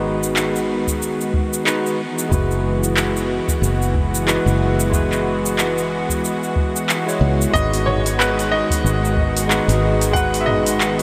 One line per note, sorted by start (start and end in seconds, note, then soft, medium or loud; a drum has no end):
0.00 1.53 G#1 medium
0.00 1.95 D#3 medium
0.00 1.64 G#3 medium
0.00 11.03 G#3 medium
0.00 1.96 B3 medium
0.00 1.66 D#4 medium
0.00 1.67 F#4 medium
0.00 11.03 F#4 medium
0.00 1.67 B4 loud
0.23 shaker medium
0.36 clap medium
0.36 shaker medium
0.56 shaker soft
0.87 kick medium
0.87 shaker medium
1.02 shaker soft
1.21 shaker soft
1.34 kick loud
1.53 1.93 B1 medium
1.53 shaker medium
1.64 1.80 G#3 medium
1.64 1.81 D#4 medium
1.64 1.82 F#4 medium
1.64 1.82 B4 medium
1.64 clap loud
1.64 shaker medium
1.86 shaker soft
1.99 7.50 E3 medium
1.99 7.50 B3 medium
2.19 shaker medium
2.29 3.39 F#1 medium
2.29 4.23 G#3 medium
2.29 4.24 E4 medium
2.29 4.25 F#4 medium
2.29 kick loud
2.29 shaker medium
2.34 4.25 B4 loud
2.51 shaker soft
2.84 shaker medium
2.97 clap medium
2.97 shaker medium
3.17 shaker soft
3.48 kick loud
3.48 shaker medium
3.62 4.37 F#1 medium
3.62 shaker medium
3.82 shaker soft
3.95 kick loud
4.15 shaker medium
4.26 4.41 G#3 medium
4.26 4.42 E4 medium
4.26 4.42 F#4 medium
4.26 4.43 B4 medium
4.26 clap medium
4.26 shaker medium
4.46 6.49 F#1 medium
4.46 shaker soft
4.80 shaker medium
4.90 6.84 G#3 medium
4.90 6.85 E4 medium
4.90 6.86 F#4 medium
4.90 kick loud
4.90 shaker medium
4.96 6.87 B4 medium
5.12 clap soft
5.12 shaker soft
5.46 shaker medium
5.59 clap medium
5.59 shaker medium
5.78 shaker soft
6.10 kick medium
6.10 shaker medium
6.25 shaker soft
6.43 shaker soft
6.56 kick loud
6.76 shaker medium
6.89 clap medium
6.89 shaker medium
7.06 7.50 G#3 medium
7.06 7.50 E4 medium
7.06 7.51 F#4 medium
7.06 7.51 C#5 medium
7.06 shaker soft
7.21 7.45 C#2 medium
7.41 shaker medium
7.51 8.62 G#1 medium
7.51 11.03 D#3 medium
7.51 9.45 G#3 medium
7.51 11.03 B3 medium
7.51 9.46 D#4 medium
7.51 9.47 F#4 medium
7.51 7.87 D#5 loud
7.51 kick loud
7.56 9.48 B4 loud
7.56 shaker medium
7.73 open hi-hat soft
7.73 shaker soft
7.86 8.20 C#5 medium
7.86 mid tom medium
8.06 open hi-hat soft
8.06 shaker medium
8.19 8.52 B4 medium
8.19 clap medium
8.19 shaker medium
8.39 open hi-hat soft
8.39 shaker soft
8.52 9.78 D#5 medium
8.70 kick loud
8.70 open hi-hat soft
8.70 shaker medium
8.84 9.59 G#1 medium
8.84 shaker soft
9.05 shaker soft
9.17 kick loud
9.37 open hi-hat medium
9.37 shaker medium
9.47 9.63 G#3 medium
9.47 9.64 D#4 medium
9.47 9.64 F#4 medium
9.47 9.65 B4 loud
9.47 clap medium
9.47 shaker medium
9.68 11.03 G#1 medium
9.68 open hi-hat soft
9.68 shaker soft
10.01 open hi-hat soft
10.01 shaker medium
10.11 11.03 G#3 medium
10.11 11.03 D#4 medium
10.11 11.03 F#4 medium
10.11 10.42 F#5 loud
10.11 kick loud
10.16 11.03 B4 loud
10.16 shaker soft
10.34 open hi-hat soft
10.34 shaker soft
10.41 10.47 E5 medium
10.46 11.03 D#5 medium
10.46 mid tom medium
10.66 open hi-hat soft
10.66 shaker medium
10.81 clap medium
10.81 shaker soft
10.99 open hi-hat soft